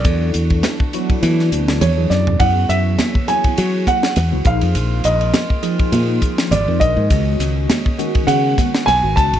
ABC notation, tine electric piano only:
X:1
M:4/4
L:1/16
Q:"Swing 16ths" 1/4=102
K:A#phr
V:1 name="Tine electric piano"
[F,B,=E=A]4- [F,B,EA] z [F,B,EF]6 z [F,B,EG]2 z | [F,B,=EG]4- [F,B,EG] z [F,B,EG]6 z [F,B,EF] [^E,A,DG]2- | [E,A,DG]4- [E,A,DG] z [E,A,DG]6 z [E,A,DA]2 z | [D,G,CF]4- [D,G,CF] z [D,G,CF]6 z [D,G,CF]2 z |]